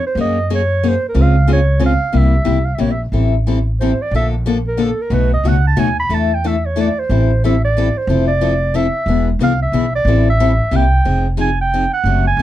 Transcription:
0.06 clarinet C5
0.15 upright bass F#2, steel-string acoustic guitar F#3 A#3 C#4 G#4
0.20 clarinet D#5
0.50 steel-string acoustic guitar F#3 A#3 C#4 G#4
0.55 clarinet C#5
0.83 steel-string acoustic guitar F#3 A#3 C#4 G#4
0.88 clarinet C5
1.09 clarinet A#4
1.14 upright bass C#2, steel-string acoustic guitar C#3 G#3 C4 F4 G#4
1.22 clarinet F5
1.47 steel-string acoustic guitar C#3 G#3 C4 F4 G#4
1.52 clarinet C#5
1.79 steel-string acoustic guitar C#3 G#3 C4 F4 G#4
1.86 clarinet F5
2.12 upright bass C2, steel-string acoustic guitar C3 G3 A#3 E4 G4
2.17 clarinet E5
2.45 upright bass C2, steel-string acoustic guitar C3 G3 A#3 E4 G4
2.65 clarinet F5
2.74 steel-string acoustic guitar C3 G3 E4, clarinet E5
2.79 upright bass A#1, steel-string acoustic guitar A#3 G4, clarinet C#5
2.91 clarinet E5
3.12 upright bass A1, steel-string acoustic guitar E3 G3 C4 E4 A4
3.47 steel-string acoustic guitar E3 G3 C4 E4 A4
3.80 steel-string acoustic guitar E3 G3 C4 E4 A4, clarinet C5
4.02 clarinet D5
4.11 upright bass A#1, steel-string acoustic guitar D3 F3 A#3
4.15 steel-string acoustic guitar D4 A4, clarinet E5
4.46 steel-string acoustic guitar D3 F3 A#3 D4 A4
4.68 clarinet A#4
4.77 steel-string acoustic guitar D3 F3 A#3 D4 A4
4.82 clarinet A4
5.01 clarinet A#4
5.10 upright bass B1, steel-string acoustic guitar B2 F#3 A3 D#4 F#4, clarinet B4
5.33 clarinet D#5
5.44 upright bass C#2, steel-string acoustic guitar B2 F#3 A3 D#4 F#4
5.48 clarinet F#5
5.67 clarinet A5
5.76 upright bass D#2, steel-string acoustic guitar B2 F#3 A3 D#4 F#4, clarinet G#5
6.00 clarinet B5
6.09 upright bass E2, steel-string acoustic guitar E3 A3 D4 E4 A4
6.14 clarinet A5
6.34 clarinet G5
6.44 steel-string acoustic guitar E3 A3 D4 E4 A4, clarinet E5
6.66 clarinet C#5
6.76 steel-string acoustic guitar E3 A3 D4 E4 A4
6.80 clarinet D5
6.99 clarinet C5
7.09 upright bass A1, steel-string acoustic guitar E3 G3 C4 E4 A4
7.44 steel-string acoustic guitar E3 G3 C4 E4 A4, clarinet E5
7.64 clarinet D5
7.77 steel-string acoustic guitar E3 G3 C4 E4 A4
7.97 clarinet C5
8.07 upright bass F1, steel-string acoustic guitar F3 C4 E4 A4
8.28 clarinet D5
8.41 steel-string acoustic guitar F3 C4 E4 A4
8.74 steel-string acoustic guitar F3 C4 E4 A4, clarinet E5
9.06 upright bass E1, steel-string acoustic guitar E3 B3 D4 G#4
9.39 upright bass C2, steel-string acoustic guitar E3 B3 D4 G#4
9.43 clarinet F5
9.62 clarinet E5
9.72 upright bass B1, steel-string acoustic guitar E3 B3 D4 G#4
9.95 clarinet D5
10.05 upright bass A1, steel-string acoustic guitar E3 G3 C4 E4 A4
10.29 clarinet E5
10.40 steel-string acoustic guitar E3 G3 C4 E4 A4
10.71 upright bass C2, steel-string acoustic guitar C3 G3 A#3 E4 G4
10.76 clarinet G5
11.05 upright bass F1, steel-string acoustic guitar F3 C4 D#4 G#4
11.37 steel-string acoustic guitar F3 C4 D#4 G#4, clarinet G#5
11.61 clarinet G5
11.74 steel-string acoustic guitar F3 C4 D#4 G#4
11.93 clarinet F#5
12.04 upright bass F#1, steel-string acoustic guitar C3 F#3 A3 D4 F#4
12.27 clarinet G#5
12.37 upright bass A1, steel-string acoustic guitar F#3

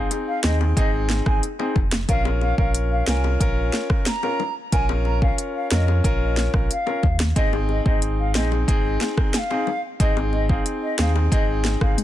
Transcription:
Already playing: grand piano C4 D#4 G#4
0.11 closed hi-hat, high bongo
0.28 flute F5
0.44 sub bass D#2, grand piano C4 D#4 G#4, flute D#5, snare
0.61 high bongo
0.77 sub bass G#1, grand piano C4 D#4 G#4, flute D#5, kick, closed hi-hat
1.10 snare, high bongo
1.26 sub bass G#1, grand piano C4 D#4 G#4, flute G#5, kick, cross-stick
1.43 closed hi-hat
1.59 grand piano C4 D#4 G#4, high bongo
1.76 sub bass F1, kick, low bongo
1.92 snare
2.09 sub bass A#1, grand piano C#4 F4 A#4, flute F5, kick, closed hi-hat
2.25 high bongo
2.41 flute F5, high bongo
2.58 sub bass A#1, grand piano C#4 F4 A#4, flute F5, kick
2.75 closed hi-hat
2.91 flute F5
3.07 sub bass C2, grand piano C#4 F4 A#4, flute G#5, snare
3.24 high bongo
3.40 sub bass A#1, grand piano C#4 F4 A#4, kick, closed hi-hat
3.73 snare, high bongo
3.90 grand piano C#4 F4 A#4, kick, cross-stick
4.06 flute A#5, snare, closed hi-hat
4.23 grand piano C#4 F4 A#4, high bongo
4.40 low bongo
4.72 sub bass A#1, grand piano C#4 F4 A#4, flute G#5, kick, closed hi-hat
4.89 high bongo
5.05 flute A#5, high bongo
5.22 grand piano C#4 F4 A#4, flute F5, kick
5.38 closed hi-hat
5.55 flute F5
5.71 sub bass F2, grand piano C#4 F4 A#4, flute D#5, snare
5.88 high bongo
6.04 sub bass A#1, grand piano C#4 F4 A#4, kick, closed hi-hat
6.37 snare, high bongo
6.54 sub bass A#1, grand piano C#4 F4 A#4, kick, cross-stick
6.70 flute F5, closed hi-hat
6.86 grand piano C#4 F4 A#4, high bongo
7.03 sub bass D#2, kick, low bongo
7.20 snare
7.36 sub bass G#1, grand piano C4 D#4 G#4, flute D#5, kick, closed hi-hat
7.53 high bongo
7.69 flute D#5, high bongo
7.85 sub bass G#1, grand piano C4 D#4 G#4, flute D#5, kick
8.02 closed hi-hat
8.19 flute F5
8.35 sub bass A#1, grand piano C4 D#4 G#4, flute D#5, snare
8.52 high bongo
8.68 sub bass G#1, grand piano C4 D#4 G#4, kick, closed hi-hat
9.01 snare, high bongo
9.17 grand piano C4 D#4 G#4, kick, cross-stick
9.34 flute F5 G#5, snare, closed hi-hat
9.50 grand piano C4 D#4 G#4, high bongo
9.67 low bongo
10.00 sub bass G#1, grand piano C4 D#4 G#4, flute D#5, kick, closed hi-hat
10.17 high bongo
10.33 flute D#5, high bongo
10.49 grand piano C4 D#4 G#4, flute F5, kick
10.66 closed hi-hat
10.82 flute D#5
10.98 sub bass D#2, grand piano C4 D#4 G#4, flute F5, snare
11.16 high bongo
11.32 sub bass G#1, grand piano C4 D#4 G#4, flute D#5, kick, closed hi-hat
11.65 snare, high bongo
11.81 sub bass G#1, grand piano C4 D#4 G#4, flute F5, kick, cross-stick
11.98 closed hi-hat, high tom

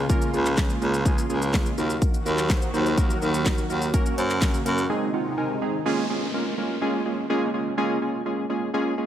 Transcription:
Already playing: analog synth pad C#3 G#3 A#3 F4
0.10 synth keys A#3 C#4 F4 A#4, kick, shaker
0.22 shaker
0.33 baritone saxophone C#2, synth keys A#3 C#4 F4 G#4, shaker
0.45 clap, shaker
0.57 synth keys A#3 C#4 G#4, kick, snare, clap, shaker
0.70 shaker
0.81 baritone saxophone C#2, synth keys A#3 C#4 F4 G#4, shaker
0.94 shaker
1.05 synth keys A#3 C#4 F4 G#4, kick, shaker
1.18 shaker
1.29 baritone saxophone C#2, synth keys A#3 C#4 F4 G#4, shaker
1.42 shaker
1.53 synth keys A#3 C#4 F4 G#4, kick, snare, clap, shaker
1.66 shaker
1.78 baritone saxophone D#2, analog synth pad D#3 F#3 F#4, synth keys A#3 D#4 F#4 A#4, shaker
1.90 shaker
2.02 kick, shaker
2.14 shaker
2.26 baritone saxophone D#2, synth keys A#3 D#4 F#4 A#4, shaker
2.38 clap, shaker
2.50 synth keys A#3 D#4 F#4 C5, kick, snare, clap, shaker
2.62 shaker
2.73 baritone saxophone D#2, synth keys A#3 D#4 F#4 C5, shaker
2.86 shaker
2.97 synth keys A#3 D#4 F#4 A#4, kick, shaker
3.10 shaker
3.22 baritone saxophone D#2, synth keys A#3 D#4 F#4 A#4, shaker
3.34 shaker
3.45 synth keys A#3 D#4 F#4 A#4, kick, snare, clap, shaker
3.58 shaker
3.70 baritone saxophone D#2, synth keys A#3 D#4 F#4 A#4, shaker
3.82 shaker
3.94 analog synth pad C#3 A#3, synth keys A#3 C#4 F#4 A#4, kick, closed hi-hat, shaker
4.06 shaker
4.18 baritone saxophone F#2, synth keys A#3 C#4 F#4 C5, closed hi-hat, shaker
4.30 clap, shaker
4.42 synth keys A#3 C#4 F#4 A#4, kick, snare, clap, closed hi-hat, shaker
4.54 shaker
4.65 baritone saxophone F#2, synth keys A#3 C#4 F#4 A#4, closed hi-hat, shaker
4.78 shaker
4.89 analog synth pad C3 D#3 G#3 D#4, synth keys G#3 C4 D#4 G#4
5.13 synth keys G#3 C4 D#4 F4 F#5
5.37 synth keys G#3 C4 D#4 A#4 G#5
5.61 synth keys G#3 C4 D#4 G#4 A#5
5.85 synth keys G#3 A#3 C#4 F4 G#4, downlifter
6.10 synth keys G#3 A#3 C#4 F4 G#4
6.34 synth keys G#3 A#3 C#4 F4 A#4
6.58 synth keys G#3 A#3 C#4 F4 A#4
6.81 synth keys G#3 A#3 C#4 F4 G#4
7.05 synth keys G#3 A#3 C#4 F4 G#4
7.30 synth keys G#3 A#3 C#4 F4 G#4
7.54 synth keys G#3 A#3 C#4 F4 G#4
7.77 synth keys G#3 A#3 C#4 F4 G#4
8.02 synth keys G#3 A#3 C#4 F4 G#4
8.26 synth keys G#3 A#3 C#4 F4 G#4
8.50 synth keys G#3 A#3 C#4 F4 G#4
8.74 synth keys G#3 A#3 C#4 F4 G#4
8.98 synth keys G#3 A#3 C#4 F4 G#4

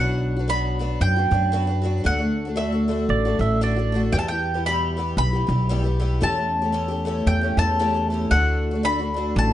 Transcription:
Already playing: upright bass B1, twelve-string acoustic guitar B2 F#3 B3 D4 F#4, mandolin F#5
0.37 twelve-string acoustic guitar B3 D4 F#4
0.48 twelve-string acoustic guitar B2 F#3 B3 D4 F#4, mandolin B5
0.79 twelve-string acoustic guitar F#3 B3 D4 F#4
1.01 upright bass F#2, mandolin G5
1.16 twelve-string acoustic guitar B3 D4 F#4
1.31 upright bass F#2, twelve-string acoustic guitar F#3 B3 D4 F#4
1.52 twelve-string acoustic guitar B2 F#3 B3 D4 F#4
1.67 twelve-string acoustic guitar B3 D4 F#4
1.82 twelve-string acoustic guitar F#3 B3 D4 F#4
2.04 upright bass D2, twelve-string acoustic guitar D3 A3 D4 F#4, mandolin F#5
2.19 twelve-string acoustic guitar A3 D4 F#4
2.45 twelve-string acoustic guitar A3 D4 F#4
2.56 twelve-string acoustic guitar D3 A3 D4 F#4, mandolin E5
2.72 twelve-string acoustic guitar A3 D4 F#4
2.88 twelve-string acoustic guitar D3 A3 D4 F#4
3.09 upright bass A1, pedal steel guitar D5
3.25 twelve-string acoustic guitar A3 D4 F#4
3.39 upright bass A1, twelve-string acoustic guitar D3 A3 D4 F#4, pedal steel guitar E5
3.61 twelve-string acoustic guitar D3 A3 D4 F#4, pedal steel guitar D5
3.76 twelve-string acoustic guitar A3 D4 F#4
3.92 twelve-string acoustic guitar D3 A3 D4 F#4
4.12 upright bass E2, twelve-string acoustic guitar E2 B2 E3 G3 B3 G4, mandolin G5
4.19 mandolin A5
4.28 twelve-string acoustic guitar E3 G3 B3 G4, mandolin G5
4.54 twelve-string acoustic guitar E3 G3 B3 G4
4.66 twelve-string acoustic guitar E2 B2 E3 G3 B3 G4, mandolin B5
4.97 twelve-string acoustic guitar E3 G3 B3 G4
5.17 upright bass B1, mandolin B5
5.33 twelve-string acoustic guitar E3 G3 B3 G4
5.47 upright bass B1, twelve-string acoustic guitar E3 G3 B3 G4
5.69 twelve-string acoustic guitar E2 B2 E3 G3 B3 G4
5.84 twelve-string acoustic guitar E3 G3 B3 G4
6.00 twelve-string acoustic guitar E3 G3 B3 G4
6.21 upright bass E2, twelve-string acoustic guitar E3 A3 C#4 G4, mandolin A5
6.35 twelve-string acoustic guitar A3 C#4 G4
6.62 twelve-string acoustic guitar A3 C#4 G4
6.72 twelve-string acoustic guitar E3 A3 C#4 G4
6.88 twelve-string acoustic guitar A3 C#4 G4
7.05 twelve-string acoustic guitar E3 A3 C#4 G4
7.27 upright bass E2, mandolin G5
7.41 twelve-string acoustic guitar A3 C#4 G4
7.57 upright bass E2, twelve-string acoustic guitar E3 A3 C#4, mandolin A5
7.61 twelve-string acoustic guitar G4
7.79 twelve-string acoustic guitar E3 A3 C#4 G4
7.94 twelve-string acoustic guitar A3 C#4 G4
8.10 twelve-string acoustic guitar E3 A3 C#4 G4
8.31 upright bass D2, twelve-string acoustic guitar D3 A3 D4 F#4, mandolin F#5
8.71 twelve-string acoustic guitar D4 F#4
8.75 twelve-string acoustic guitar A3
8.83 twelve-string acoustic guitar D3 A3 D4 F#4, mandolin B5
9.00 twelve-string acoustic guitar A3 D4 F#4
9.14 twelve-string acoustic guitar D3 A3 D4 F#4
9.36 upright bass A1, mandolin A5

